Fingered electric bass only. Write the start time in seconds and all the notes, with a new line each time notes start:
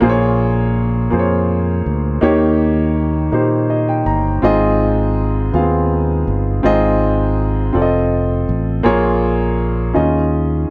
0.02 A#1
1.13 F2
1.86 D2
2.23 D#2
3.33 A#2
4.06 G1
4.43 G#1
5.54 D#2
6.27 G1
6.64 G#1
7.75 F1
8.49 A1
8.85 A#1
9.96 D#2